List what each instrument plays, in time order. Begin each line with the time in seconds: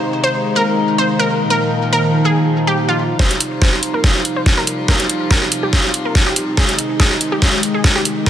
Already playing: string section C3 D#3 G#3 D#4, ambient pad G#3 D#4 C5 F5 A#5, synth pluck C5
0.24 synth pluck C5
0.56 synth pluck A#4
0.98 synth pluck C5
1.19 synth pluck A#4
1.50 string section A#2 F3, ambient pad D#3, synth pluck A#4
1.93 synth pluck A#4
2.25 synth pluck G#4
2.67 synth pluck G4
2.89 synth pluck F4
3.19 string section C3 F3 G3 F4, synth pluck C5, kick, snare
3.31 closed hi-hat
3.40 closed hi-hat
3.62 synth pluck C5, kick, snare
3.83 closed hi-hat
3.94 synth pluck A#4
4.04 kick, snare
4.25 closed hi-hat
4.36 synth pluck C5
4.46 kick, snare
4.58 synth pluck A#4
4.67 closed hi-hat
4.88 synth pluck A#4, kick, snare
5.00 closed hi-hat
5.10 closed hi-hat
5.31 synth pluck A#4, kick, snare
5.52 closed hi-hat
5.63 synth pluck G4
5.73 kick, snare
5.94 closed hi-hat
6.05 synth pluck A#4
6.15 kick, snare
6.27 synth pluck G4
6.36 closed hi-hat
6.57 string section D#3 G#3 D#4, ambient pad G#3, synth pluck G#4, kick, snare
6.69 closed hi-hat
6.79 closed hi-hat
7.00 synth pluck G#4, kick, snare
7.21 closed hi-hat
7.32 synth pluck G4
7.42 kick, snare
7.63 closed hi-hat
7.74 synth pluck G#4
7.84 kick, snare
7.96 synth pluck G4
8.05 closed hi-hat
8.26 ambient pad D#3, string section F3 A#3 F4, synth pluck A#4, kick, snare